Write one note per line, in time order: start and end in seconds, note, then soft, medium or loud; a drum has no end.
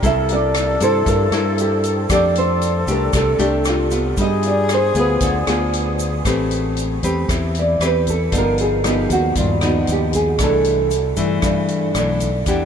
0.02 0.76 C2 medium
0.02 1.04 C3 medium
0.02 0.76 A#3 medium
0.02 0.76 E4 medium
0.02 2.06 A4 loud
0.02 0.77 A4 medium
0.02 0.31 E5 loud
0.02 kick medium
0.02 closed hi-hat medium
0.02 shaker medium
0.29 0.83 D5 medium
0.29 closed hi-hat soft
0.29 shaker soft
0.54 cross-stick medium
0.54 closed hi-hat soft
0.54 shaker medium
0.80 1.04 G2 medium
0.80 1.28 A#3 medium
0.80 1.28 E4 medium
0.80 1.29 A4 medium
0.80 1.06 C5 medium
0.80 closed hi-hat soft
0.80 shaker medium
1.06 1.30 G2 medium
1.06 2.07 G2 medium
1.06 1.56 A#4 medium
1.06 kick medium
1.06 closed hi-hat medium
1.06 shaker medium
1.31 2.05 G2 medium
1.31 2.06 A#3 medium
1.31 2.06 E4 medium
1.31 2.06 A4 medium
1.31 cross-stick medium
1.31 closed hi-hat soft
1.31 shaker soft
1.58 1.96 G4 medium
1.58 closed hi-hat soft
1.58 shaker medium
1.84 closed hi-hat soft
1.84 shaker medium
2.10 2.83 F2 medium
2.10 3.11 F3 medium
2.10 2.83 A3 medium
2.10 2.84 D4 medium
2.10 2.84 G4 medium
2.10 3.86 A4 medium
2.10 2.35 D5 medium
2.10 kick medium
2.10 cross-stick medium
2.10 closed hi-hat medium
2.10 shaker medium
2.35 2.90 C5 medium
2.35 closed hi-hat soft
2.35 shaker soft
2.62 closed hi-hat soft
2.62 shaker medium
2.87 3.11 C2 medium
2.87 3.35 A3 medium
2.87 3.36 D4 medium
2.87 3.35 G4 medium
2.87 closed hi-hat soft
2.87 shaker medium
2.91 3.16 A#4 medium
3.13 3.37 C2 medium
3.13 4.15 C3 medium
3.13 3.68 A4 medium
3.13 kick medium
3.13 cross-stick medium
3.13 closed hi-hat medium
3.13 shaker medium
3.39 4.13 C2 loud
3.39 3.87 A3 medium
3.39 3.87 D4 medium
3.39 3.87 G4 medium
3.39 closed hi-hat soft
3.39 shaker soft
3.65 cross-stick medium
3.65 closed hi-hat soft
3.65 shaker medium
3.69 4.03 F4 medium
3.91 4.91 B3 medium
3.91 4.91 F4 medium
3.91 closed hi-hat soft
3.91 shaker medium
4.17 4.91 G2 medium
4.17 5.19 G3 medium
4.17 5.95 G#4 loud
4.17 kick medium
4.17 closed hi-hat medium
4.17 shaker medium
4.21 4.46 D#5 loud
4.43 closed hi-hat soft
4.43 shaker soft
4.47 4.69 D5 medium
4.69 cross-stick medium
4.69 closed hi-hat soft
4.69 shaker medium
4.74 4.98 C5 medium
4.94 5.19 D2 medium
4.94 5.43 B3 medium
4.94 5.43 F4 medium
4.94 5.43 G#4 medium
4.94 closed hi-hat soft
4.94 shaker medium
4.99 5.97 B4 medium
5.21 5.45 D2 medium
5.21 6.22 D3 medium
5.21 kick medium
5.21 closed hi-hat medium
5.21 shaker medium
5.47 6.21 D2 medium
5.47 6.21 B3 medium
5.47 6.21 F4 medium
5.47 6.21 G#4 medium
5.47 cross-stick medium
5.47 closed hi-hat soft
5.47 shaker soft
5.73 closed hi-hat soft
5.99 closed hi-hat soft
5.99 shaker medium
6.25 6.98 A1 medium
6.25 7.26 A3 medium
6.25 6.99 C4 medium
6.25 6.99 G4 soft
6.25 6.99 B4 medium
6.25 kick medium
6.25 cross-stick medium
6.25 closed hi-hat medium
6.25 shaker medium
6.51 closed hi-hat soft
6.51 shaker soft
6.77 closed hi-hat soft
6.77 shaker soft
7.03 7.27 E2 medium
7.03 7.76 C4 medium
7.03 7.77 G4 medium
7.03 7.77 B4 medium
7.03 kick soft
7.03 closed hi-hat soft
7.03 shaker medium
7.29 7.77 E2 medium
7.29 8.30 E3 medium
7.29 kick medium
7.29 cross-stick medium
7.29 closed hi-hat soft
7.29 shaker medium
7.55 closed hi-hat soft
7.55 shaker soft
7.59 7.82 D5 medium
7.79 8.28 E2 medium
7.79 8.14 C4 medium
7.79 8.14 G4 medium
7.79 8.14 B4 medium
7.79 cross-stick medium
7.79 closed hi-hat soft
7.79 shaker medium
7.85 8.08 B4 medium
8.06 8.33 A4 medium
8.06 kick soft
8.06 closed hi-hat soft
8.06 shaker medium
8.32 9.06 G1 medium
8.32 9.33 G2 medium
8.32 8.79 F3 medium
8.32 8.80 B3 medium
8.32 8.80 D#4 medium
8.32 kick medium
8.32 closed hi-hat medium
8.32 shaker medium
8.38 8.60 A#4 medium
8.58 8.84 G#4 medium
8.58 closed hi-hat soft
8.58 shaker soft
8.84 9.57 F3 medium
8.84 9.58 B3 medium
8.84 9.58 D#4 medium
8.84 cross-stick medium
8.84 closed hi-hat soft
8.84 shaker medium
8.88 9.11 G4 medium
9.10 9.34 D#2 medium
9.10 9.36 F#4 medium
9.10 kick soft
9.10 closed hi-hat soft
9.10 shaker medium
9.35 9.84 D#2 medium
9.35 10.37 G2 medium
9.35 9.62 F4 medium
9.35 kick medium
9.35 closed hi-hat medium
9.35 shaker medium
9.61 10.35 F3 medium
9.61 10.35 B3 medium
9.61 10.35 D#4 medium
9.61 9.88 F#4 medium
9.61 cross-stick medium
9.61 closed hi-hat soft
9.61 shaker soft
9.87 10.36 D#2 medium
9.87 closed hi-hat soft
9.87 shaker medium
9.92 10.14 G4 medium
10.13 10.39 G#4 medium
10.13 kick soft
10.13 closed hi-hat soft
10.13 shaker medium
10.39 11.13 C2 medium
10.39 11.40 C3 medium
10.39 10.91 E3 medium
10.39 10.91 A3 medium
10.39 10.91 D4 medium
10.39 kick medium
10.39 cross-stick medium
10.39 closed hi-hat medium
10.39 shaker medium
10.43 11.41 A4 medium
10.64 closed hi-hat soft
10.64 shaker soft
10.91 closed hi-hat soft
10.91 shaker soft
11.16 11.41 G2 medium
11.16 11.90 E3 medium
11.16 11.91 A3 medium
11.16 11.91 D4 medium
11.16 kick soft
11.16 closed hi-hat soft
11.16 shaker medium
11.42 11.96 G2 medium
11.42 12.44 G2 medium
11.42 kick medium
11.42 cross-stick medium
11.42 closed hi-hat medium
11.42 shaker medium
11.68 closed hi-hat soft
11.68 shaker soft
11.94 12.43 B1 medium
11.94 12.28 E3 medium
11.94 12.28 A3 soft
11.94 12.29 D4 medium
11.94 cross-stick medium
11.94 closed hi-hat soft
11.94 shaker medium
12.20 kick soft
12.20 closed hi-hat soft
12.20 shaker medium
12.46 12.65 E2 medium
12.46 12.65 E3 medium
12.46 12.65 B3 medium
12.46 12.65 D4 medium
12.46 12.65 G4 medium
12.46 kick medium
12.46 closed hi-hat medium
12.46 shaker medium